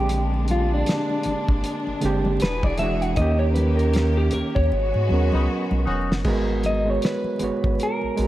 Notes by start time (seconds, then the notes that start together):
Already playing: A#1 D3 G#3 A#3 C4 D4 G4
0.09 closed hi-hat, low conga
0.34 muted conga
0.48 F4, closed hi-hat, high conga
0.74 D4
0.86 snare, closed hi-hat, muted conga
1.10 muted conga
1.23 G1, closed hi-hat, low conga
1.49 G1, kick
1.64 closed hi-hat
1.87 G1, muted conga
2.01 G1 D3 G#3 C4, closed hi-hat
2.05 G4
2.25 high conga
2.40 E1 E3 F#4 G#4 B4, snare, closed hi-hat, muted conga
2.63 D5, kick, high conga
2.78 E3 G#3 D4 E5, closed hi-hat, low conga
2.83 F#4
3.02 F#5, closed hi-hat
3.16 D#2 D#3 A#3 C#4 G4 D#5, kick, closed hi-hat, low conga
3.22 G4
3.39 C#5
3.54 B4, closed hi-hat, high conga
3.77 A#4, closed hi-hat
3.93 snare, closed hi-hat, muted conga
4.17 G4
4.31 D#2 A#4, closed hi-hat, low conga
4.55 D#2 C#5, kick
4.71 G#1 G#3 B3 F#4, muted conga
4.94 G#2, muted conga
5.09 D#2 F#3 B3 C#4
5.14 A#4
5.32 C#2 D#3 B3 D#4, high conga
5.71 B1, muted conga, high conga
5.86 E1 C#4 D#4 F#4, low conga
6.10 F#1, snare
6.24 G#1 G#3 B3 F#4, kick, crash, muted conga, low conga
6.29 A#4
6.48 muted conga
6.63 D#5, closed hi-hat, high conga
6.85 G#3 B3 F#4
6.90 C#5
7.02 B4, snare, closed hi-hat
7.24 muted conga, high conga
7.39 G#1 G#3 B3 F#4, closed hi-hat, low conga
7.44 C#5
7.64 G#1, kick
7.79 closed hi-hat, muted conga
7.83 A#4
8.02 A#1, muted conga
8.17 A#1 G#3 B3 F#4, closed hi-hat
8.22 G4